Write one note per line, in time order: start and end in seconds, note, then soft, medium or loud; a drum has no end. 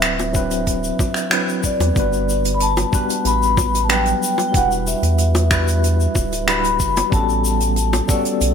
0.00 0.91 D1 medium
0.00 0.33 F#3 medium
0.00 0.34 C4 medium
0.00 0.35 D4 medium
0.00 0.35 E4 medium
0.00 0.36 B4 medium
0.00 1.28 E5 medium
0.00 finger snap medium
0.00 closed hi-hat medium
0.00 shaker medium
0.19 closed hi-hat soft
0.19 high bongo medium
0.19 shaker soft
0.33 0.59 F#3 medium
0.33 0.60 C4 medium
0.33 0.60 D4 medium
0.33 0.60 E4 medium
0.33 0.61 B4 medium
0.33 kick medium
0.33 shaker medium
0.51 closed hi-hat medium
0.51 shaker soft
0.67 kick medium
0.67 closed hi-hat medium
0.67 shaker medium
0.84 shaker soft
0.99 kick loud
0.99 high bongo medium
0.99 shaker medium
1.14 finger snap soft
1.14 closed hi-hat medium
1.14 shaker medium
1.30 1.92 F#3 medium
1.30 1.92 C4 medium
1.30 1.92 D4 medium
1.30 1.93 E4 medium
1.30 1.93 B4 medium
1.30 finger snap medium
1.30 closed hi-hat medium
1.30 shaker medium
1.49 shaker soft
1.64 2.57 D5 loud
1.64 kick medium
1.64 shaker medium
1.80 1.91 E2 loud
1.80 closed hi-hat medium
1.80 high bongo medium
1.80 shaker soft
1.94 2.85 G1 loud
1.94 2.88 G3 medium
1.94 2.89 B3 medium
1.94 2.89 D4 medium
1.94 kick loud
1.94 closed hi-hat medium
1.94 shaker medium
1.98 2.90 F#4 medium
1.98 2.91 B4 medium
2.13 shaker soft
2.29 shaker medium
2.45 closed hi-hat medium
2.45 shaker soft
2.54 2.61 B5 medium
2.60 3.28 A5 loud
2.60 closed hi-hat medium
2.60 shaker medium
2.77 closed hi-hat soft
2.77 high bongo medium
2.77 shaker soft
2.92 3.18 G3 medium
2.92 3.18 B3 medium
2.92 3.18 D4 medium
2.92 3.19 F#4 medium
2.92 3.19 B4 medium
2.92 kick loud
2.92 shaker medium
3.10 closed hi-hat medium
3.10 shaker soft
3.25 4.14 A1 medium
3.25 3.80 B5 loud
3.25 closed hi-hat medium
3.25 shaker medium
3.42 shaker soft
3.57 kick loud
3.57 high bongo medium
3.57 shaker medium
3.75 closed hi-hat medium
3.75 shaker medium
3.84 3.90 A5 medium
3.89 4.51 F#3 medium
3.89 4.50 G3 medium
3.89 4.50 B3 medium
3.89 4.51 D4 medium
3.89 4.51 B4 medium
3.89 4.47 G5 loud
3.89 finger snap medium
3.89 closed hi-hat medium
3.89 shaker medium
4.05 closed hi-hat soft
4.05 shaker soft
4.23 shaker loud
4.38 closed hi-hat medium
4.38 high bongo medium
4.38 shaker medium
4.48 5.46 G3 medium
4.48 4.55 G5 medium
4.53 4.94 E1 loud
4.53 5.47 D4 medium
4.53 5.47 E4 medium
4.53 5.48 F#4 medium
4.53 4.70 F#5 loud
4.53 kick loud
4.53 closed hi-hat medium
4.53 shaker medium
4.58 5.49 B4 medium
4.71 shaker soft
4.87 6.53 E5 medium
4.87 shaker medium
5.03 6.07 E2 medium
5.03 closed hi-hat medium
5.03 shaker soft
5.18 closed hi-hat medium
5.18 shaker medium
5.35 closed hi-hat soft
5.35 high bongo loud
5.35 shaker soft
5.50 5.76 G3 medium
5.50 5.76 D4 medium
5.50 5.76 E4 medium
5.50 5.77 F#4 medium
5.50 5.77 B4 loud
5.50 finger snap medium
5.50 kick loud
5.50 shaker medium
5.68 closed hi-hat medium
5.68 shaker medium
5.84 closed hi-hat medium
5.84 shaker medium
6.00 shaker soft
6.15 6.79 D1 medium
6.15 kick loud
6.15 high bongo medium
6.15 shaker medium
6.32 closed hi-hat medium
6.32 shaker soft
6.47 7.08 G3 medium
6.47 7.08 D4 medium
6.47 7.09 E4 medium
6.47 7.09 F#4 medium
6.47 7.09 B4 medium
6.47 7.15 B5 loud
6.47 finger snap medium
6.47 closed hi-hat medium
6.47 shaker medium
6.64 closed hi-hat soft
6.64 shaker soft
6.80 7.02 F#1 medium
6.80 kick medium
6.80 shaker medium
6.97 closed hi-hat medium
6.97 high bongo loud
6.97 shaker medium
7.09 8.01 A1 loud
7.09 8.04 G3 medium
7.09 8.05 B3 medium
7.09 8.05 C#4 medium
7.09 8.12 A5 loud
7.09 kick loud
7.09 closed hi-hat medium
7.09 shaker medium
7.14 8.06 F#4 medium
7.14 8.07 A4 medium
7.29 shaker soft
7.45 shaker loud
7.60 closed hi-hat medium
7.60 shaker medium
7.76 closed hi-hat medium
7.76 shaker medium
7.93 closed hi-hat soft
7.93 high bongo loud
7.93 shaker soft
8.08 8.34 G3 medium
8.08 8.34 B3 medium
8.08 8.34 C#4 medium
8.08 8.35 F#4 medium
8.08 8.35 A4 loud
8.08 8.54 D5 medium
8.08 kick loud
8.08 shaker medium
8.25 closed hi-hat medium
8.25 shaker soft
8.41 8.54 B1 medium
8.41 closed hi-hat medium
8.41 shaker medium